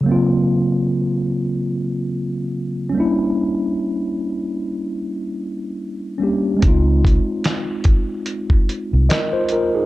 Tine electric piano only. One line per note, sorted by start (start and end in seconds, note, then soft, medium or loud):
0.01 2.87 C#3 medium
0.01 2.88 F#3 medium
0.06 2.89 A#3 medium
0.06 2.91 C4 medium
0.12 2.92 F4 medium
2.90 6.17 G3 medium
2.90 6.16 C#4 medium
2.95 6.19 A#3 medium
2.95 6.20 D4 medium
3.00 6.21 E4 medium
6.18 6.62 G3 soft
6.18 6.62 A#3 soft
6.18 6.61 C#4 medium
6.18 6.63 D4 soft
6.23 6.64 G4 medium
6.57 9.85 G#3 medium
6.57 9.86 C4 medium
6.64 9.06 D#4 medium
6.64 9.08 F4 medium
9.09 9.32 A#4 medium
9.09 9.32 D#5 medium
9.33 9.50 F4 medium
9.33 9.50 C5 medium
9.52 9.74 F4 medium
9.52 9.74 A#4 medium
9.75 9.86 D#4 soft
9.75 9.86 G#4 medium